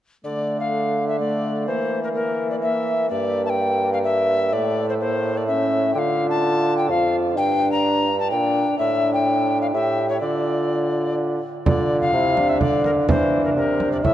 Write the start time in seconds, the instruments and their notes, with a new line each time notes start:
0.24 bassoon D3, trombone A3, recorder D5
0.60 recorder F5
1.08 recorder E5
1.20 trombone A3, recorder D5
1.67 bassoon E3, trombone A#3, recorder C5
2.03 recorder A#4
2.14 trombone A#3, recorder A#4
2.50 recorder D5
2.62 trombone A#3, recorder E5
3.10 bassoon G2, trombone A#3, recorder D5
3.45 recorder A5
3.50 recorder G5
3.93 recorder F5
4.04 recorder E5
4.53 bassoon A2, trombone A3, recorder D5
4.89 recorder C5
5.00 trombone A#3, recorder C5
5.37 recorder D5
5.47 trombone C#4, recorder E5
5.94 bassoon D3, trombone F4, recorder G5
5.99 recorder F5
6.30 recorder A5
6.78 recorder G5
6.90 bassoon F2, trombone F4, recorder F5
7.37 bassoon G2, trombone D4, recorder G5
7.72 recorder A#5
8.20 recorder A5
8.31 bassoon A#2, trombone D4, recorder G5
8.78 bassoon A2, trombone D4, recorder E5
9.14 recorder G5
9.62 recorder F5
9.73 bassoon A2, trombone G4, recorder E5
10.09 recorder C#5
10.20 bassoon D3, trombone F4, recorder D5
11.66 bassoon D3, trombone F4, recorder D5, frame drum
12.01 recorder F5
12.13 bassoon C3, trombone E4
12.37 trombone D4, frame drum
12.49 recorder E5
12.61 bassoon D3, recorder D5, frame drum
12.84 recorder A#4, frame drum
13.08 bassoon E3, recorder C5, frame drum
13.45 recorder A#4
13.56 bassoon C3, recorder A#4
13.80 frame drum
13.92 recorder D5
14.03 bassoon A2, trombone E4, recorder E5, frame drum